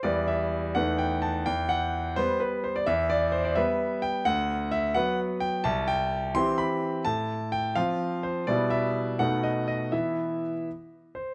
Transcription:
X:1
M:6/8
L:1/16
Q:3/8=85
K:Em
V:1 name="Grand piano"
d2 e4 f2 g2 a2 | g2 f4 c2 B2 c d | e2 d2 c d e4 g2 | f4 e2 f2 z2 g2 |
a2 g4 c'2 b4 | a4 g2 =f4 c2 | d2 e4 f2 ^d2 d2 | e6 z4 c2 |]
V:2 name="Grand piano"
[E,,G,EB]6 [E,,A,^DB]6 | E,,6 [G,B,B]6 | E,,6 [G,B,B]6 | D,,6 [F,B,B]6 |
C,,6 [E,CG]6 | A,,6 [=F,C=F]6 | [B,,G,B,E]6 [B,,A,B,^D]6 | [E,B,E]6 z6 |]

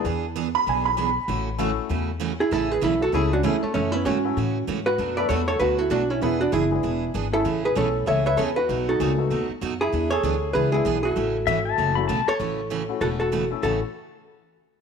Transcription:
X:1
M:4/4
L:1/16
Q:"Swing" 1/4=194
K:A
V:1 name="Pedal steel guitar"
z16 | z16 | z16 | z16 |
z16 | z16 | z16 | z16 |
z16 | z4 e2 a4 b2 a3 z | z16 | z16 |]
V:2 name="Hollow-body jazz guitar"
z16 | z12 z2 [EG]2 | [EA]2 [GB]2 [EA]2 [FA]2 [EG]2 [DF]2 [CE]2 [A,C]2 | [A,C]2 [CE]2 [CF]8 z2 [FB]2- |
[FB]2 [Bd]2 [Ac]2 [Ac]2 [FB]2 [FA]2 [DF]2 [CE]2 | [B,E]2 [DF]2 [EG]8 z2 [EA]2- | [EA]2 [GB]2 [Ac]4 [ce]2 [ce]2 [Ac]2 [FB]2- | [FB]2 [FA]8 z4 [EG]2- |
[EG]2 [Ac]6 [GB]2 [EG]4 [FA]2- | [FA]12 z2 [Ac]2- | [Ac]8 [FA]2 [FA]4 z2 | A2 z12 z2 |]
V:3 name="Felt piano"
z6 b2 g2 b6 | z12 z2 E2 | E2 G2 E2 F2 E2 C2 A,2 A,2 | A,2 B,2 C8 z2 F2- |
F2 B2 A2 A2 F2 E2 D2 C2 | B,2 D2 E8 z2 E2- | E2 G2 A4 A2 B2 A2 F2- | F2 ^D8 z4 E2- |
E2 G6 E2 E4 E2- | E12 z4 | z16 | z16 |]
V:4 name="Upright piano"
z16 | z4 [A,CEFA]6 z6 | z8 [A,CEGA]2 z2 [A,CEGA]2 z2 | z6 [A,CEFA]2 z8 |
z2 [A,B,DFA]6 z8 | z6 [G,B,DEG]6 z2 [A,CEGA]2 | z4 [A,CEA]6 z6 | z4 [G,_B,D=FG]2 [A,=B,^D^FA]4 z6 |
z8 z2 [G,B,DEG]2 z4 | z8 z2 [F,A,CEF]2 z4 | z6 [A,CEF]6 z2 [A,CEA]2 | [A,CEF]2 z12 z2 |]
V:5 name="Steel-string acoustic guitar"
[E,B,DG]2 z2 [E,B,DG]2 z2 [E,B,DG]2 z2 [E,B,DG]2 z2 | [C,E,A,CF]2 z2 [C,E,A,CF]2 z2 [C,E,A,CF]2 z2 [C,E,A,CF]2 z2 | [C,E,A,CG]2 z2 [C,E,A,CG]2 z2 [C,E,A,CG]2 z2 [C,E,A,CG]2 z2 | [C,E,A,CF]2 z2 [C,E,A,CF]2 z2 [C,E,A,CF]2 z2 [C,E,A,CF]2 z2 |
[B,,F,A,DF]2 z2 [B,,F,A,DF]2 z2 [B,,F,A,DF]2 z2 [B,,F,A,DF]2 z2 | [E,B,DG]2 z2 [E,B,DG]2 z2 [E,B,DG]2 z2 [E,B,DG]2 z2 | [C,E,A,CG]2 z2 [C,E,A,CG]2 z2 [C,E,A,CG]2 z2 [C,E,A,CG]2 z2 | [B,,F,A,^DF]2 z2 [B,,F,A,DF]2 z2 [B,,F,A,DF]2 z2 [B,,F,A,DF]2 z2 |
[E,B,DG]2 z2 [E,B,DG]2 z2 [E,B,DG]2 z2 [E,B,DG]2 z2 | [C,E,A,CF]2 z2 [C,E,A,CF]2 z2 [C,E,A,CF]2 z2 [C,E,A,CF]2 z2 | [C,E,A,CF]2 z2 [C,E,A,CF]2 z2 [C,E,A,CF]2 z2 [C,E,A,CF]2 z2 | [A,,C,E,A,CF]2 z12 z2 |]
V:6 name="Upright bass" clef=bass
E,,8 B,,,8 | A,,,8 E,,8 | A,,,4 B,,,4 C,,4 E,,2 z2 | F,,4 G,,4 A,,4 G,,4 |
F,,4 E,,4 D,,4 B,,,4 | E,,,4 F,,,4 E,,,4 G,,,4 | A,,,4 B,,,4 C,,4 E,,4 | B,,,4 C,,4 ^D,,2 z2 F,,4 |
E,,4 D,,4 C,,4 B,,,4 | A,,,4 G,,,4 F,,,4 B,,,2 z2 | A,,,8 E,,,8 | A,,,2 z12 z2 |]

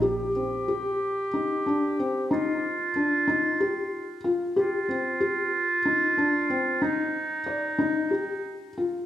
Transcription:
X:1
M:7/8
L:1/8
Q:1/4=93
K:Cm
V:1 name="Clarinet"
G6- G | F6 z | F6- F | E6 z |]
V:2 name="Felt piano"
G C G2 E D C | E2 D E G2 F | G C G2 E D C | E2 d E G2 F |]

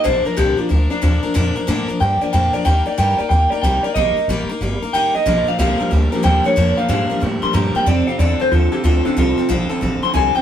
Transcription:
X:1
M:4/4
L:1/8
Q:"Swing" 1/4=184
K:Bb
V:1 name="Clean electric guitar"
c B G F D D3- | D3 z g d g d | g d g d g d g d | e2 z4 g e- |
e f f2 z2 g _d- | _d f f2 z c' b g | d f d c F G F D | F2 z3 c' _a g |]
V:2 name="Steel-string acoustic guitar"
[B,,D,F,B,DB] [F,B,DB] [B,,D,F,B,DB] [F,B,DB] [F,B,DB] [F,B,DB] [B,,D,F,B,DB] [F,B,DB] | [B,,D,F,B,DB] [F,B,DB] [B,,D,F,B,DB] [F,B,DB] [F,B,DB] [F,B,DB] [B,,D,F,B,DB] [F,B,DB] | [E,G,B,EB] [B,EB] [E,G,B,EB] [B,EB] [G,B,EB] [B,EB] [E,G,B,EB] [B,EB] | [E,G,B,EB] [B,EB] [E,G,B,EB] [B,EB] [G,B,EB] [B,EB] [E,G,B,EB] [B,EB] |
[B,,D,F,B,DB] [F,B,DB] [B,,D,F,B,DB] [F,B,DB] [F,B,DB] [F,B,DB] [B,,D,F,B,DB] [F,B,DB] | [B,,D,F,B,DB] [F,B,DB] [B,,D,F,B,DB] [F,B,DB] [F,B,DB] [F,B,DB] [B,,D,F,B,DB] [F,B,DB] | [F,CFA] [CFA] [F,CFA] [CFA] [F,CFA] [CFA] [F,CFA] [CFA] | [F,CFA] [CFA] [F,CFA] [CFA] [F,CFA] [CFA] [F,CFA] [CFA] |]
V:3 name="Clean electric guitar" clef=bass
z8 | z8 | z8 | z8 |
[B,,F,] [B,,F,] [B,,G,] [B,,G,] [B,,G,] [B,,G,] [B,,G,] [B,,G,] | [B,,F,] [B,,F,] [B,,G,] [B,,G,] [B,,G,] [B,,G,] [B,,G,] [B,,G,] | [F,,C,] [F,,C,] [F,,D,] [F,,D,] [F,,D,] [F,,D,] [F,,D,] [F,,D,] | [F,,C,] [F,,C,] [F,,D,] [F,,D,] [F,,D,] [F,,D,] [F,,D,] [F,,D,] |]
V:4 name="Upright bass" clef=bass
B,,, z C,, z D,, z E,, z | F,, z A,, z G,, z F,, z | E,, z G,, z E,, z C,, z | B,,, z A,,, z G,,, z A,,, z |
B,,, z C,, z D,, z E,, z | F,, z _A,, z =A,, z G,, z | F,, z =E,, z _E,, z D,, z | C,, z B,,, z A,,, z C,, z |]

